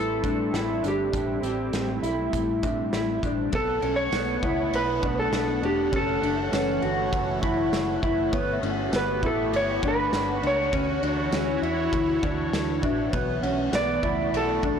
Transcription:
Already playing: A1 G3 A3 C4 E4 A4
0.23 A2 D4, kick, closed hi-hat
0.53 A1 E4, snare, closed hi-hat
0.82 G1 D4, closed hi-hat
0.88 G4
1.12 A1 D4, kick, closed hi-hat
1.43 A1 C4, closed hi-hat
1.73 A1, snare, closed hi-hat
2.03 B1 E4, closed hi-hat
2.33 A1, kick, closed hi-hat
2.63 A2 D4 E5, kick, closed hi-hat
2.93 A1 E4, snare, closed hi-hat
3.23 A1 D4, kick, closed hi-hat
3.52 B1 B2 A3 B3 A4 F#5, kick, ride
3.82 B1 C#4 A4, ride
3.96 C#5
4.12 B1 B3, snare, ride, tambourine
4.43 C#2 E4, kick, ride
4.73 B1 B4, ride
5.03 B1 D4, kick, ride
5.19 A4
5.32 B1, snare, ride, tambourine
5.62 E1 D4 G4, ride
5.92 F#1 E3 C#4 A4 C#5, kick, ride
6.22 F#1 D4, ride
6.52 F#1 C#4 B4, snare, ride, tambourine
6.82 G1 F#4, ride
7.13 F#1, kick, ride
7.42 F#1 E4, kick, ride
7.72 F#1, snare, ride, tambourine
8.03 F#1 E4, kick, ride
8.32 G1 B3 F#4 G4 C#5, kick, ride
8.52 E5
8.63 G1 C#4, ride
8.71 F#5
8.92 G1 B3 B4, snare, ride, tambourine
9.22 A1 E4 A4, kick, ride
9.52 G1 C#5, ride
9.83 G1 D4, kick, ride
9.88 B4
10.12 G1, snare, ride, tambourine
10.42 C#2 D4, ride
10.47 C#5
10.72 D2 E3 C#4 E4 C#5, kick, ride
11.03 D2 D4, ride
11.32 D2 C#4, snare, ride, tambourine
11.62 E2 E4, ride
11.93 D2, kick, ride
12.23 D2 D4, kick, ride
12.53 D2, snare, ride, tambourine
12.83 A1 D4 E5, kick, ride
13.13 B1 A3 B3 F#4, kick, ride
13.43 B1 C#4 F#5, ride
13.72 B1 B3 D5, snare, ride, tambourine
14.03 C#2 E4, kick, ride
14.32 B1, ride
14.37 A4
14.62 B1 D4, kick, ride

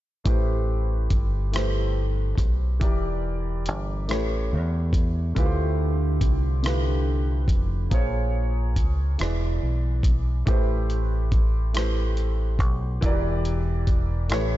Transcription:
0.24 A1 A3 E4 G4 B4, kick, closed hi-hat
0.29 C5
1.10 G1, kick, closed hi-hat
1.52 A3 E4 G4 B4, closed hi-hat
1.56 C5, cross-stick
2.38 B1, kick, closed hi-hat
2.80 E1 E3 E4 G4 A#4 D5, kick, closed hi-hat
3.66 G1, closed hi-hat
4.08 A1 A3 E4 G4 B4 C#5, cross-stick, closed hi-hat
4.53 E2
4.93 kick, closed hi-hat
5.35 D2 D3 A3 E4 F4 G4 B4, kick, closed hi-hat
5.45 C5
6.21 C2, kick, closed hi-hat
6.63 D3 A3 E4 F4 G4 B4, cross-stick, closed hi-hat
7.48 F1, kick, closed hi-hat
7.90 A#1 A#3 F4 G#4 C5, kick, closed hi-hat
7.94 C#5
8.76 C#2, kick, closed hi-hat
9.18 E1 E3 E4 G#4 B4 D5, cross-stick, closed hi-hat
9.63 B1
10.03 kick, closed hi-hat
10.46 A1 A3 E4 G4 B4 C5, kick, closed hi-hat
10.90 closed hi-hat
11.32 kick, closed hi-hat
11.73 A3 E4 G4 B4 C5, cross-stick, closed hi-hat
12.17 closed hi-hat
12.59 B1, kick, closed hi-hat
13.01 E1 E3 E4 F#4 A#4 D5, kick, closed hi-hat
13.09 G4
13.45 closed hi-hat
13.87 kick, closed hi-hat
14.29 A1 A3 E4 G4 B4, cross-stick, closed hi-hat
14.33 C#5

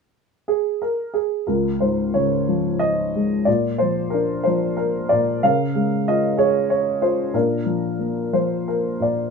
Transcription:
0.48 G#4
0.82 A#4
1.14 G#4
1.47 C#2 F4 A#4
1.80 G#2 C5
2.14 C#3 C#5
2.48 F3
2.79 D#5
3.15 G#3
3.45 A#2 F4 D5
3.78 F3 C5
4.10 D4 A#4
4.44 F3 C5
4.77 A#4
5.09 A#2 D5
5.43 C#3 A#4 F5
5.75 G#3
6.08 F4 D#5
6.37 G#4 C#5
6.70 C#5
7.01 F4 C5
7.34 A#2 D4 A#4
7.66 F3
7.99 A#3
8.33 F3 C5
8.68 A#4
9.00 A#2 D5

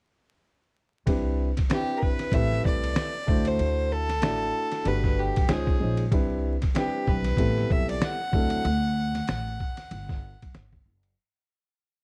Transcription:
1.06 C2 C4 D4 E4 G4 B4, kick, ride
1.57 kick, snare, ride
1.69 C4 D4 E4 G4 B4, snare, hi-hat pedal, ride
1.97 A#4
2.02 B4, kick
2.19 snare, ride
2.32 A1 A3 C4 E4 G4 B4 E5, kick, ride
2.52 snare
2.65 C2 D5, kick
2.84 ride
2.96 snare, hi-hat pedal, ride
3.26 D2 A3 D4 E4 F#4 C5, kick
3.45 C5, ride
3.59 D2, ride
3.93 A4
4.09 snare, ride
4.21 A1 A3 D4 E4 F#4 D5, snare, hi-hat pedal, ride
4.72 snare, ride
4.84 G1 A3 D4 F#4 G4 B4, ride
5.04 kick, snare
5.19 G4
5.36 B1, kick, ride
5.47 C#2 G#3 C#4 D#4 F4 G#4 C5, snare, hi-hat pedal, ride
5.67 kick
5.79 A#1 G#3 C#4 D#4 F4 C5
5.97 ride
6.11 C2 G3 C4 D4 E4 B4, kick, ride
6.62 kick, snare, ride
6.74 G3 C4 D4 E4 G4 B4, snare, hi-hat pedal, ride
7.07 B1 B4, kick
7.24 snare, ride
7.37 A1 G3 B3 C4 E4 A4, kick, ride
7.58 snare
7.70 B1 E5, kick
7.89 D5, ride
8.02 F#5, snare, hi-hat pedal, ride
8.31 D2 F#3 C4 D4 E4 A4, kick
8.50 ride
8.65 D2, ride
9.15 snare, ride
9.27 A1, snare, hi-hat pedal, ride
9.60 kick
9.77 snare, ride
9.91 G1, ride
10.09 kick, snare
10.42 B1, kick, ride
10.54 G1, snare, hi-hat pedal, ride
10.72 kick
10.86 F#1
11.03 ride

